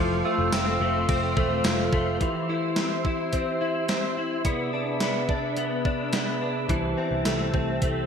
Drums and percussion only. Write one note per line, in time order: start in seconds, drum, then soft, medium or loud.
0.52 snare loud
0.52 ride medium
0.52 tambourine medium
1.09 kick medium
1.09 ride medium
1.37 kick loud
1.64 snare loud
1.64 ride medium
1.64 tambourine medium
1.93 kick medium
2.21 kick medium
2.21 closed hi-hat medium
2.76 snare loud
2.76 closed hi-hat medium
3.05 kick medium
3.33 kick medium
3.33 closed hi-hat medium
3.89 snare loud
3.89 closed hi-hat medium
4.45 kick medium
4.45 closed hi-hat medium
5.00 snare loud
5.00 closed hi-hat medium
5.29 kick medium
5.57 closed hi-hat medium
5.85 kick medium
6.13 snare loud
6.13 closed hi-hat medium
6.69 kick medium
6.69 closed hi-hat medium
7.25 snare loud
7.25 closed hi-hat medium
7.54 kick medium
7.82 kick medium
7.82 closed hi-hat medium